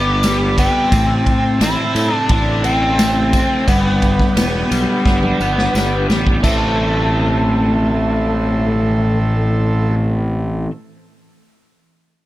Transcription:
Already playing: G1 G3 B3 D4 G4 B4 D5 B5
0.23 G3, snare, ride, tambourine
0.58 B3 C4, kick, ride, tambourine
0.92 A1 A2 C5 E5 A5, kick, ride, tambourine
1.26 kick, ride, tambourine
1.61 A1 C4 E4, snare, ride, tambourine
1.95 A2 A3, ride, tambourine
2.15 D4
2.29 A1 D4 E4, kick, ride
2.64 C4, ride, tambourine
2.98 A3, snare, ride, tambourine
3.33 C4, kick, ride, tambourine
3.67 G1 G2 B3 B4 D5 G5, kick, ride, tambourine
4.02 kick, ride, tambourine
4.19 kick, snare
4.36 E1 B3, snare, ride, tambourine
4.71 B1 G3, ride, tambourine
5.06 G1 D4, kick, snare, tambourine
5.23 high tom
5.40 G1 B3, tambourine
5.58 snare
5.75 G1 G3, snare, tambourine
6.09 A1 B3, snare, tambourine
6.27 kick
6.43 A1 A2 E3 A3 C4 E4 A4 C5 E5, kick, crash, tambourine
6.47 C5

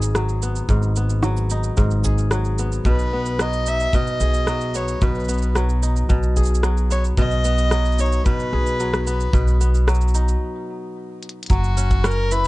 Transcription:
Already playing: G#1 G#2 F#3 B3 D#4 G#4
0.02 cabasa
0.15 F#3, cross-stick, cabasa
0.29 cabasa
0.42 B3, cabasa
0.56 cabasa
0.69 G#1 G#2, kick, cabasa
0.83 cabasa
0.96 B3, cabasa
1.10 cabasa
1.23 F#3, cross-stick, cabasa
1.37 cabasa
1.50 D#4, cabasa
1.63 cabasa
1.77 G#1 G#2, kick, cabasa
1.91 cabasa
2.04 G#4, kick, cabasa
2.18 cabasa
2.31 F#3, cross-stick, cabasa
2.45 cabasa
2.58 B3, cabasa
2.72 cabasa
2.85 B1 B2 B4, kick, cabasa
2.99 cabasa
3.13 B3
3.26 cabasa
3.39 F#3 D#5, cross-stick, cabasa
3.53 cabasa
3.66 D#4 E5, cabasa
3.80 cabasa
3.93 B2 D#5, kick, cabasa
4.07 cabasa
4.20 B1 G#4, cabasa
4.34 cabasa
4.47 F#3, cross-stick, cabasa
4.61 cabasa
4.75 B3 C#5, cabasa
4.88 cabasa
5.02 B1 B2 B4, kick, cabasa
5.15 cabasa
5.20 cabasa
5.24 cabasa
5.28 B3, cabasa
5.38 cabasa
5.42 cabasa
5.55 F#3, cross-stick, cabasa
5.69 cabasa
5.83 D#4, cabasa
5.96 cabasa
6.09 B1 B2, kick, cabasa
6.23 cabasa
6.37 G#4, kick, cabasa
6.43 cabasa
6.46 cabasa
6.55 cabasa
6.63 F#3, cross-stick, cabasa
6.77 cabasa
6.90 B3 C#5, cabasa
7.04 cabasa
7.17 B1 B2 D#5, kick, cabasa
7.31 cabasa
7.45 B3, cabasa
7.58 cabasa
7.71 F#3, cross-stick, cabasa
7.85 cabasa
7.92 cabasa
7.99 D#4 C#5, cabasa
8.06 cabasa
8.12 cabasa
8.26 B2 B4, kick, cabasa
8.40 cabasa
8.53 B1 G#4
8.67 cabasa
8.80 F#3, cabasa
8.94 cross-stick, cabasa
9.07 B3 B4, cabasa
9.21 cabasa
9.33 B1 B2, kick, cabasa
9.48 cabasa
9.61 B3, cabasa
9.75 cabasa
9.88 F#3, cross-stick, cabasa
9.95 cabasa
10.01 cabasa
10.08 cabasa
10.14 D#4, cabasa
10.28 cabasa
11.23 closed hi-hat
11.29 closed hi-hat
11.43 closed hi-hat
11.46 closed hi-hat
11.50 F#1 F#3 F#4, kick, closed hi-hat, cabasa
11.53 closed hi-hat
11.64 cabasa
11.77 C#4, cabasa
11.91 kick, cabasa
12.04 C#4 A#4, cross-stick, cabasa
12.11 cabasa
12.31 E4 B4, cabasa

